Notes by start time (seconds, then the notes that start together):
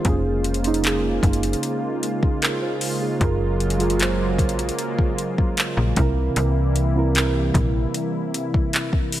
Already playing: G#3 D#4 F4 C5
0.04 F1 C#3 A#3 C#4, kick, closed hi-hat
0.09 G#4
0.44 closed hi-hat
0.54 closed hi-hat
0.62 A#3 C#4, closed hi-hat
0.67 D#4
0.74 closed hi-hat
0.82 A#3 C#4, clap, closed hi-hat
0.87 G#4
1.23 F#1, kick, closed hi-hat
1.33 closed hi-hat
1.43 closed hi-hat
1.53 closed hi-hat
1.63 closed hi-hat
2.03 closed hi-hat
2.23 kick
2.42 F4 A#4, clap, closed hi-hat
2.62 F4 C5
2.81 open hi-hat
3.02 D#4 G#4
3.19 F#1 F#3 A#3 F4 G#4, kick, closed hi-hat
3.24 A#4
3.60 closed hi-hat
3.70 closed hi-hat
3.78 F#3 F4 G#4, closed hi-hat
3.83 A#4
3.90 closed hi-hat
3.97 F#3 F4 G#4, clap, closed hi-hat
4.02 C5
4.38 A#1, kick, closed hi-hat
4.49 closed hi-hat
4.59 closed hi-hat
4.69 closed hi-hat
4.79 closed hi-hat
4.99 kick
5.18 closed hi-hat
5.38 kick
5.57 clap, closed hi-hat
5.77 A#1
5.95 C2 C3 E3 G3 A#3 C4 E4, kick, closed hi-hat
6.00 A#4
6.36 C2, closed hi-hat
6.76 closed hi-hat
6.94 C3 C4 E4
6.99 A#4
7.14 C3 C4 E4, clap, closed hi-hat
7.18 A#4
7.54 A#1, kick, closed hi-hat
7.94 closed hi-hat
8.34 closed hi-hat
8.54 kick
8.73 clap, closed hi-hat
8.93 kick
9.12 open hi-hat